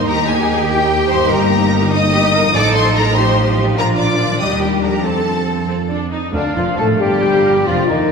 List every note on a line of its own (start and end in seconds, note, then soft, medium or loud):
0.00 1.22 D#3 medium
0.00 1.14 A#3 medium
0.00 1.25 A#3 medium
0.00 1.19 D#4 medium
0.00 1.25 D#4 medium
0.00 2.53 A#4 medium
0.07 1.27 D#2 medium
0.07 1.89 G4 loud
0.07 0.15 A#4 loud
0.07 0.27 A#5 loud
0.26 0.67 G#4 medium
0.26 0.67 G#5 loud
0.68 1.09 G4 medium
0.68 1.08 G5 loud
1.09 2.47 G2 medium
1.09 1.29 C5 loud
1.09 1.29 C6 loud
1.16 2.49 A#3 medium
1.20 2.45 D#4 medium
1.25 3.73 D#4 medium
1.25 3.77 D#5 medium
1.29 2.52 G1 medium
1.29 2.50 A#3 medium
1.29 1.93 A#4 medium
1.29 1.93 A#5 loud
1.92 2.00 D#4 medium
1.92 2.54 D#5 loud
1.92 2.53 D#6 loud
2.13 2.33 G4 medium
2.34 3.71 A2 medium
2.34 2.42 A#4 medium
2.41 3.64 F3 medium
2.46 3.75 D#4 medium
2.50 3.77 C5 medium
2.50 2.74 D6 loud
2.54 3.78 A1 medium
2.54 4.37 F3 medium
2.54 3.14 A4 loud
2.54 2.63 D5 loud
2.74 2.95 C5 medium
2.74 2.94 C6 loud
2.95 3.16 A#4 loud
2.95 3.15 A#5 loud
3.14 3.76 G4 medium
3.14 3.57 C5 loud
3.14 3.56 C6 loud
3.60 4.34 A#2 medium
3.65 4.36 F3 medium
3.70 4.31 D4 medium
3.74 5.01 D4 medium
3.74 4.40 F4 medium
3.74 4.36 A#4 medium
3.74 3.86 A#4 medium
3.78 4.40 A#1 medium
3.78 3.86 A#5 loud
3.97 4.40 D5 medium
3.97 4.39 D6 loud
4.24 4.98 D#3 medium
4.29 5.00 G3 soft
4.33 5.02 D4 soft
4.40 5.05 D#2 medium
4.40 5.01 G3 medium
4.40 5.03 G4 medium
4.40 4.62 D#5 loud
4.40 4.61 D#6 loud
4.61 4.83 G4 medium
4.61 4.69 G5 medium
4.83 5.05 A#4 medium
4.83 5.04 A#5 medium
4.87 7.55 F3 medium
4.92 6.29 A3 soft
4.96 6.31 C4 soft
5.01 5.60 C4 medium
5.01 6.33 A4 soft
5.01 6.01 A4 medium
5.01 5.68 A5 loud
5.05 6.12 F2 medium
5.05 5.68 A4 medium
5.69 5.77 C4 medium
5.90 6.11 D4 medium
6.12 6.33 D#4 medium
6.32 6.40 D2 medium
6.32 6.42 D2 medium
6.32 7.69 A#2 medium
6.32 6.43 D3 medium
6.32 6.41 D3 medium
6.32 6.58 D4 medium
6.32 6.54 D4 medium
6.32 6.54 D5 medium
6.32 6.97 F5 medium
6.45 7.69 A#3 soft
6.55 6.65 F1 medium
6.55 6.63 F2 medium
6.55 6.77 F3 medium
6.55 6.78 F3 medium
6.55 7.43 D4 soft
6.55 6.64 F4 medium
6.55 6.78 F4 medium
6.55 6.78 F5 medium
6.68 7.32 F4 soft
6.77 7.00 A1 medium
6.77 7.00 A2 medium
6.77 7.00 A3 medium
6.77 7.01 A3 medium
6.77 6.85 A4 medium
6.77 6.86 A4 medium
6.77 6.89 A4 medium
6.77 7.21 A#4 medium
6.77 6.86 A5 medium
6.90 7.11 D5 soft
7.00 7.66 G1 medium
7.00 7.65 G2 medium
7.00 7.67 G3 medium
7.00 7.65 G4 medium
7.00 7.66 G4 medium
7.00 7.68 G4 medium
7.00 7.24 D5 medium
7.00 8.12 F5 medium
7.00 7.66 G5 medium
7.12 7.69 D5 soft
7.22 7.68 A#4 soft
7.22 7.45 C5 medium
7.33 8.00 F4 medium
7.44 7.68 D4 soft
7.44 7.56 A#4 medium
7.56 8.12 F3 soft
7.66 7.75 F1 medium
7.66 7.75 F2 medium
7.66 8.12 F2 medium
7.66 7.89 F3 medium
7.66 7.88 F4 medium
7.66 7.91 F4 medium
7.66 7.89 F4 medium
7.66 8.12 D5 medium
7.66 7.88 F5 medium
7.78 8.12 A3 soft
7.89 8.12 D#2 medium
7.89 8.12 D#3 medium
7.89 8.12 C4 soft
7.89 8.12 D#4 medium
7.89 8.12 D#5 medium
8.01 8.12 F4 soft